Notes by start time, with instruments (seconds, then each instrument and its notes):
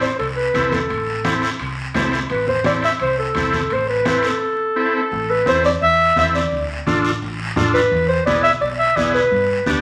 0.01 clarinet C5, high timbale, short guiro
0.19 fingered electric bass C2, clarinet A4, high conga, high timbale, long guiro
0.36 clarinet B4
0.54 fingered electric bass C2, transistor combo organ C4 E4 A4, high conga, high timbale, short guiro
0.72 clarinet A4, high conga, high timbale, short guiro
0.90 fingered electric bass A1, high conga, high timbale, long guiro
1.25 transistor combo organ C4 E4 A4, high conga, high timbale, short guiro
1.42 high timbale, short guiro
1.59 fingered electric bass C2, high conga, high timbale, long guiro
1.94 fingered electric bass C2, transistor combo organ C4 E4 A4, high conga, high timbale, low timbale, short guiro
2.12 high timbale, short guiro
2.30 fingered electric bass A1, clarinet B4, high conga, high timbale, long guiro
2.47 clarinet C5, high conga
2.64 transistor combo organ C4 E4 A4, clarinet D5, high conga, high timbale, short guiro
2.82 clarinet E5, high timbale, short guiro
3.00 fingered electric bass C2, clarinet C5, high conga, high timbale, long guiro
3.19 clarinet A4
3.35 fingered electric bass C2, transistor combo organ C4 E4 A4, high conga, high timbale, short guiro
3.53 clarinet A4, high conga, high timbale, short guiro
3.70 fingered electric bass A1, clarinet C5, high conga, high timbale, long guiro
3.89 clarinet B4
4.05 transistor combo organ C4 E4 A4, clarinet B4, high conga, high timbale, short guiro
4.23 clarinet A4, high timbale, short guiro
4.76 transistor combo organ C4 E4 A4
4.95 clarinet A4
5.12 fingered electric bass A1, high conga, long guiro
5.30 clarinet B4
5.46 fingered electric bass E2, transistor combo organ C4 E4 A4, clarinet C5, high conga, short guiro
5.64 clarinet D5, short guiro
5.82 fingered electric bass E2, clarinet E5, high conga, long guiro
6.16 fingered electric bass E2, transistor combo organ C4 E4 A4, clarinet E5, high conga, short guiro
6.35 clarinet D5, short guiro
6.52 fingered electric bass D2, high conga, long guiro
6.86 fingered electric bass A1, transistor combo organ D4 F4 A4, high conga, short guiro
7.05 short guiro
7.22 fingered electric bass A1, high conga, long guiro
7.56 fingered electric bass A1, transistor combo organ D4 F4 A4, high conga, low conga, short guiro
7.74 clarinet B4, short guiro
7.91 fingered electric bass E2, high conga, long guiro
8.08 clarinet C5
8.25 fingered electric bass B1, transistor combo organ B3 E4 G#4, clarinet D5, high conga, short guiro
8.43 clarinet E5, short guiro
8.61 fingered electric bass B1, clarinet D5, high conga, long guiro
8.79 clarinet E5
8.96 fingered electric bass B1, transistor combo organ B3 E4 G#4, clarinet D5, high conga, short guiro
9.14 clarinet B4, short guiro
9.31 fingered electric bass G2, high conga, long guiro
9.66 fingered electric bass D2, transistor combo organ B3 D4 G4, high conga, short guiro